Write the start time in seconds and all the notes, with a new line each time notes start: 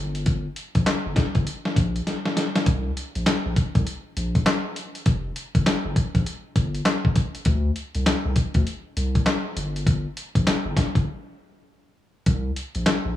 Already playing: G1
0.15 closed hi-hat
0.26 kick, closed hi-hat
0.56 closed hi-hat
0.75 A#1, kick, closed hi-hat
0.86 G1, snare, clap, closed hi-hat
1.06 G1
1.16 kick, snare, closed hi-hat
1.35 G1, kick, closed hi-hat
1.47 closed hi-hat
1.65 snare
1.76 A#1, kick, closed hi-hat
1.96 closed hi-hat
2.07 snare, closed hi-hat
2.25 snare
2.37 snare, closed hi-hat
2.56 snare, closed hi-hat
2.66 C2, kick, closed hi-hat
2.97 closed hi-hat
3.15 A#1, closed hi-hat
3.26 A#1, snare, clap, closed hi-hat
3.46 A#1
3.56 kick, closed hi-hat
3.75 C2, kick, closed hi-hat
3.87 closed hi-hat
4.17 A#1, closed hi-hat
4.35 kick, closed hi-hat
4.46 snare, clap, closed hi-hat
4.76 closed hi-hat
4.95 closed hi-hat
5.06 F1, kick, closed hi-hat
5.36 closed hi-hat
5.55 G1, kick, closed hi-hat
5.66 G1, snare, clap, closed hi-hat
5.85 G1
5.96 kick, closed hi-hat
6.15 A#1, kick, closed hi-hat
6.26 closed hi-hat
6.56 G1, kick, closed hi-hat
6.75 closed hi-hat
6.85 snare, clap, closed hi-hat
7.05 kick
7.16 kick, closed hi-hat
7.35 closed hi-hat
7.45 D2, kick, closed hi-hat
7.76 closed hi-hat
7.95 C2, closed hi-hat
8.06 C2, snare, clap, closed hi-hat
8.25 C2
8.36 kick, closed hi-hat
8.54 D2, kick, closed hi-hat
8.67 closed hi-hat
8.97 C2, closed hi-hat
9.15 kick, closed hi-hat
9.26 snare, clap, closed hi-hat
9.57 G1, closed hi-hat
9.76 closed hi-hat
9.87 kick, closed hi-hat
10.17 closed hi-hat
10.35 A#1, kick, closed hi-hat
10.47 G1, snare, clap, closed hi-hat
10.65 G1
10.77 kick, snare, closed hi-hat
10.95 G1, kick, closed hi-hat
12.26 C2, kick, closed hi-hat
12.56 closed hi-hat
12.75 A#1, closed hi-hat
12.86 A#1, snare, clap, closed hi-hat
13.05 A#1